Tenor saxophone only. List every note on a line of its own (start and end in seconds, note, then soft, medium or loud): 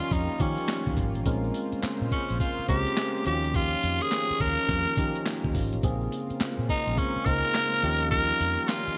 0.00 0.14 F4 loud
0.12 0.42 D#4 medium
0.41 0.98 C#4 medium
2.12 2.38 C#4 medium
2.40 2.67 F4 medium
2.69 3.22 G4 loud
3.26 3.57 G4 loud
3.56 4.03 F4 loud
4.02 4.42 G#4 loud
4.41 5.55 A#4 loud
6.70 6.99 D#4 loud
6.98 7.27 C#4 loud
7.26 8.10 A#4 loud
8.11 8.70 A#4 loud
8.68 8.98 F4 loud